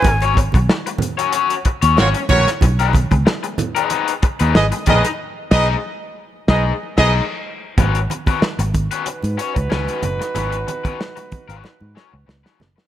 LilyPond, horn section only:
\new Staff \with { instrumentName = "Horn section" } { \time 4/4 \key gis \minor \tempo 4 = 93 <fis' ais' cis''>16 r2 r8. <fis' ais' cis''>16 r16 <fis' ais' cis''>8 | r2. <gis' b' dis''>16 r16 <gis' b' dis''>8 | r8 <gis' b' dis''>8 r4 <gis' b' dis''>8 r16 <gis' b' dis''>8 r8. | r2 <dis' fis' b'>2~ |
<dis' fis' b'>2.~ <dis' fis' b'>8 r8 | }